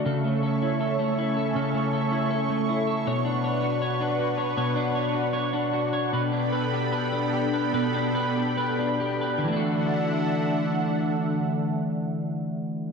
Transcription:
Already playing: clean electric guitar A3 D4
0.05 clean electric guitar C#3 A4, analog synth pad C#4 A4 C#5 E5 C#6
0.24 clean electric guitar A3
0.43 clean electric guitar A4
0.62 clean electric guitar E4
0.81 clean electric guitar A4
0.99 clean electric guitar A3
1.19 clean electric guitar E4
1.37 clean electric guitar A4
1.55 clean electric guitar C#3 A4
1.75 clean electric guitar A3
1.93 clean electric guitar A4
2.12 clean electric guitar E4
2.31 clean electric guitar A4
2.50 clean electric guitar A3
2.69 clean electric guitar E4
2.87 clean electric guitar A4
3.07 clean electric guitar B2 C#5, analog synth pad D4 B4 F#5
3.25 clean electric guitar D4
3.44 clean electric guitar C#5
3.63 clean electric guitar F#4
3.82 clean electric guitar C#5
4.00 clean electric guitar D4
4.19 clean electric guitar F#4
4.38 clean electric guitar C#5
4.57 clean electric guitar B2 C#5
4.76 clean electric guitar D4
4.95 clean electric guitar C#5
5.15 clean electric guitar F#4
5.33 clean electric guitar C#5
5.53 clean electric guitar D4
5.73 clean electric guitar F#4
5.93 clean electric guitar C#5
6.13 clean electric guitar B2 B4, analog synth pad B3 A4 G5 B5
6.32 clean electric guitar D4
6.52 clean electric guitar B4
6.73 clean electric guitar G4
6.93 clean electric guitar B4
7.12 clean electric guitar D4
7.33 clean electric guitar G4
7.54 clean electric guitar B4
7.73 clean electric guitar B2 B4
7.94 clean electric guitar D4
8.15 clean electric guitar B4
8.35 clean electric guitar G4
8.57 clean electric guitar B4
8.79 clean electric guitar D4
9.00 clean electric guitar G4
9.21 clean electric guitar B4
9.38 clean electric guitar D3
9.44 analog synth pad D3 D4 A4 E5 F#5, clean electric guitar E3
9.48 clean electric guitar A3
9.52 clean electric guitar D4
9.56 clean electric guitar F#4

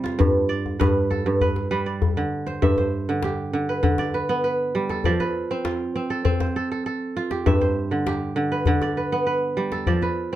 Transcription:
Already playing: kora C3 G3 G4
0.04 kora F4, djembe slap
0.19 kora G2, djembe tone, djembe bass
0.49 kora D5, djembe slap
0.66 djembe tone
0.79 kora G2 B4, djembe slap, djembe bass
1.10 kora A4, djembe tone
1.26 kora G2, djembe slap
1.41 kora B4, djembe slap, djembe bass
1.56 djembe slap, djembe tone
1.71 kora G3 B4
1.86 kora D5
2.02 djembe tone, djembe bass
2.17 kora D3, djembe slap
2.47 kora C5, djembe slap
2.62 kora G2 E5, djembe bass
2.78 kora C5, djembe tone
3.09 kora D3
3.22 kora G4, djembe slap
3.53 kora D3
3.69 kora B4
3.83 kora D3, djembe bass
3.98 kora D5, djembe slap, djembe tone
4.14 kora B4, djembe slap
4.29 kora B3
4.44 kora B4
4.75 kora G3
4.89 kora A4, djembe slap
5.04 kora F3 D5, djembe bass
5.20 kora B4, djembe tone
5.51 kora C4
5.65 kora F4, djembe slap
5.96 kora C4
6.10 kora A4
6.25 kora C4, djembe bass
6.40 kora C5, djembe slap, djembe tone
6.56 kora A4, djembe slap
6.72 kora A4
6.86 kora A4
7.17 kora F4
7.31 kora G4, djembe slap
7.46 kora G2 E5, djembe bass
7.61 kora C5, djembe tone
7.91 kora D3
8.07 kora G4, djembe slap
8.36 kora D3
8.52 kora B4
8.66 kora D3, djembe bass
8.81 kora D5, djembe slap, djembe tone
8.96 kora B4, djembe slap
9.12 kora B3
9.27 kora B4
9.57 kora G3
9.72 kora A4, djembe slap
9.87 kora F3 D5, djembe slap, djembe bass
10.02 kora B4, djembe tone

